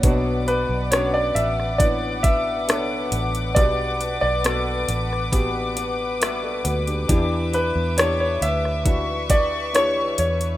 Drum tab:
HH |x-x-x-x-x-x-x-xx|x-x-x-x-x-x-x-xx|x-x-x-x-x-x-x-xx|
SD |----r--r----r---|----r--r----r---|----r--r----r---|
BD |o-------o-o-----|o-------o-------|o-------o-o-----|